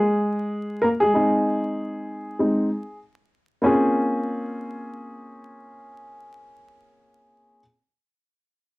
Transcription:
0, 0, Header, 1, 2, 480
1, 0, Start_track
1, 0, Key_signature, -5, "minor"
1, 0, Tempo, 625000
1, 876, Time_signature, 4, 2, 24, 8
1, 6749, End_track
2, 0, Start_track
2, 0, Title_t, "Grand piano"
2, 0, Program_c, 0, 0
2, 0, Note_on_c, 0, 56, 67
2, 0, Note_on_c, 0, 68, 91
2, 609, Note_off_c, 0, 56, 0
2, 627, Note_on_c, 0, 70, 89
2, 643, Note_on_c, 0, 58, 69
2, 653, Note_off_c, 0, 68, 0
2, 665, Note_off_c, 0, 70, 0
2, 682, Note_off_c, 0, 58, 0
2, 769, Note_on_c, 0, 68, 91
2, 786, Note_on_c, 0, 56, 52
2, 862, Note_off_c, 0, 56, 0
2, 874, Note_on_c, 0, 56, 50
2, 879, Note_on_c, 0, 60, 45
2, 882, Note_on_c, 0, 63, 56
2, 1825, Note_off_c, 0, 56, 0
2, 1827, Note_off_c, 0, 60, 0
2, 1831, Note_off_c, 0, 63, 0
2, 1837, Note_on_c, 0, 56, 43
2, 1839, Note_on_c, 0, 60, 40
2, 1842, Note_on_c, 0, 63, 48
2, 2053, Note_off_c, 0, 56, 0
2, 2054, Note_off_c, 0, 60, 0
2, 2056, Note_off_c, 0, 63, 0
2, 2280, Note_off_c, 0, 68, 0
2, 2778, Note_on_c, 0, 58, 68
2, 2787, Note_on_c, 0, 60, 61
2, 2794, Note_on_c, 0, 61, 71
2, 2804, Note_on_c, 0, 65, 62
2, 2812, Note_on_c, 0, 68, 76
2, 5829, Note_off_c, 0, 58, 0
2, 5833, Note_off_c, 0, 60, 0
2, 5837, Note_off_c, 0, 61, 0
2, 5841, Note_off_c, 0, 65, 0
2, 5845, Note_off_c, 0, 68, 0
2, 6749, End_track
0, 0, End_of_file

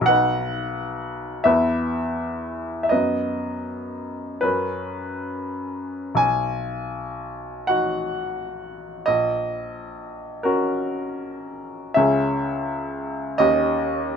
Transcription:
0, 0, Header, 1, 2, 480
1, 0, Start_track
1, 0, Key_signature, 5, "major"
1, 0, Tempo, 918836
1, 46, Time_signature, 6, 3, 24, 8
1, 1006, Tempo, 996678
1, 1966, Tempo, 1073345
1, 2446, Tempo, 1190476
1, 2926, Tempo, 1018676
1, 3406, Tempo, 931677
1, 5326, Tempo, 1039861
1, 5806, Tempo, 950872
1, 6915, End_track
2, 0, Start_track
2, 0, Title_t, "Upright piano"
2, 0, Program_c, 0, 0
2, 0, Control_c, 0, 64, 127
2, 0, Note_on_c, 0, 61, 38
2, 0, Note_on_c, 0, 66, 44
2, 0, Note_on_c, 0, 70, 58
2, 6, Note_on_c, 0, 35, 48
2, 31, Note_on_c, 0, 78, 78
2, 42, Note_on_c, 0, 63, 33
2, 43, Note_on_c, 0, 71, 32
2, 55, Control_c, 0, 64, 0
2, 57, Note_off_c, 0, 61, 0
2, 57, Note_off_c, 0, 70, 0
2, 59, Note_off_c, 0, 66, 0
2, 137, Control_c, 0, 64, 127
2, 719, Note_off_c, 0, 35, 0
2, 737, Note_off_c, 0, 63, 0
2, 738, Note_off_c, 0, 71, 0
2, 751, Note_on_c, 0, 76, 70
2, 752, Note_off_c, 0, 78, 0
2, 758, Note_on_c, 0, 40, 50
2, 759, Note_on_c, 0, 59, 36
2, 759, Note_on_c, 0, 71, 35
2, 768, Control_c, 0, 64, 0
2, 858, Control_c, 0, 64, 127
2, 1436, Note_off_c, 0, 76, 0
2, 1443, Note_on_c, 0, 76, 45
2, 1460, Note_off_c, 0, 40, 0
2, 1460, Note_off_c, 0, 59, 0
2, 1460, Note_off_c, 0, 71, 0
2, 1472, Note_on_c, 0, 75, 59
2, 1480, Note_off_c, 0, 76, 0
2, 1481, Note_on_c, 0, 71, 30
2, 1483, Note_on_c, 0, 42, 42
2, 1483, Note_on_c, 0, 59, 31
2, 1489, Control_c, 0, 64, 0
2, 1588, Control_c, 0, 64, 127
2, 2178, Note_off_c, 0, 71, 0
2, 2180, Note_off_c, 0, 42, 0
2, 2180, Note_off_c, 0, 59, 0
2, 2185, Note_on_c, 0, 71, 59
2, 2192, Note_on_c, 0, 70, 31
2, 2193, Note_off_c, 0, 75, 0
2, 2194, Note_on_c, 0, 42, 41
2, 2196, Note_on_c, 0, 61, 31
2, 2207, Control_c, 0, 64, 0
2, 2287, Control_c, 0, 64, 127
2, 2907, Note_off_c, 0, 70, 0
2, 2908, Note_off_c, 0, 42, 0
2, 2909, Note_off_c, 0, 61, 0
2, 2912, Note_on_c, 0, 35, 43
2, 2920, Note_off_c, 0, 71, 0
2, 2920, Note_on_c, 0, 80, 72
2, 2936, Control_c, 0, 64, 0
2, 3017, Control_c, 0, 64, 127
2, 3649, Note_on_c, 0, 78, 61
2, 3650, Note_off_c, 0, 80, 0
2, 3658, Note_on_c, 0, 63, 35
2, 3658, Note_on_c, 0, 66, 40
2, 4343, Note_off_c, 0, 35, 0
2, 4353, Note_off_c, 0, 63, 0
2, 4353, Note_off_c, 0, 66, 0
2, 4362, Note_on_c, 0, 75, 72
2, 4369, Note_off_c, 0, 78, 0
2, 4372, Note_on_c, 0, 34, 41
2, 4379, Control_c, 0, 64, 0
2, 4461, Control_c, 0, 64, 127
2, 5071, Note_on_c, 0, 70, 54
2, 5074, Note_off_c, 0, 75, 0
2, 5079, Note_on_c, 0, 61, 37
2, 5081, Note_on_c, 0, 66, 43
2, 5786, Note_off_c, 0, 34, 0
2, 5786, Note_off_c, 0, 61, 0
2, 5787, Note_off_c, 0, 66, 0
2, 5795, Note_on_c, 0, 76, 67
2, 5801, Note_off_c, 0, 70, 0
2, 5802, Note_on_c, 0, 61, 38
2, 5804, Note_on_c, 0, 37, 45
2, 5804, Note_on_c, 0, 68, 39
2, 5813, Control_c, 0, 64, 0
2, 5899, Control_c, 0, 64, 127
2, 6502, Note_off_c, 0, 61, 0
2, 6502, Note_off_c, 0, 68, 0
2, 6503, Note_off_c, 0, 37, 0
2, 6518, Note_off_c, 0, 76, 0
2, 6520, Note_on_c, 0, 75, 78
2, 6526, Note_on_c, 0, 39, 53
2, 6529, Note_on_c, 0, 61, 40
2, 6529, Note_on_c, 0, 67, 39
2, 6532, Control_c, 0, 64, 0
2, 6623, Control_c, 0, 64, 127
2, 6915, Note_off_c, 0, 39, 0
2, 6915, Note_off_c, 0, 61, 0
2, 6915, Note_off_c, 0, 67, 0
2, 6915, Note_off_c, 0, 75, 0
2, 6915, End_track
0, 0, End_of_file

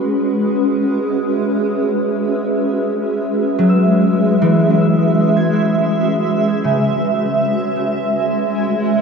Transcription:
0, 0, Header, 1, 3, 480
1, 0, Start_track
1, 0, Tempo, 500000
1, 8655, End_track
2, 0, Start_track
2, 0, Title_t, "Ambient pad"
2, 0, Program_c, 0, 92
2, 0, Note_on_c, 0, 56, 74
2, 0, Note_on_c, 0, 61, 83
2, 0, Note_on_c, 0, 66, 77
2, 0, Note_on_c, 0, 71, 75
2, 476, Note_on_c, 0, 76, 74
2, 6503, Note_off_c, 0, 56, 0
2, 6515, Note_on_c, 0, 56, 89
2, 8655, Note_off_c, 0, 56, 0
2, 8655, Note_off_c, 0, 61, 0
2, 8655, Note_off_c, 0, 66, 0
2, 8655, Note_off_c, 0, 71, 0
2, 8655, Note_off_c, 0, 76, 0
2, 8655, End_track
3, 0, Start_track
3, 0, Title_t, "Harp"
3, 0, Program_c, 1, 46
3, 0, Note_on_c, 1, 66, 78
3, 2070, Note_off_c, 1, 66, 0
3, 3442, Note_on_c, 1, 54, 72
3, 3544, Note_on_c, 1, 88, 60
3, 4239, Note_on_c, 1, 52, 73
3, 5151, Note_on_c, 1, 92, 61
3, 5360, Note_off_c, 1, 88, 0
3, 6377, Note_on_c, 1, 49, 66
3, 6420, Note_off_c, 1, 52, 0
3, 6420, Note_off_c, 1, 54, 0
3, 6565, Note_off_c, 1, 49, 0
3, 8655, Note_off_c, 1, 92, 0
3, 8655, End_track
0, 0, End_of_file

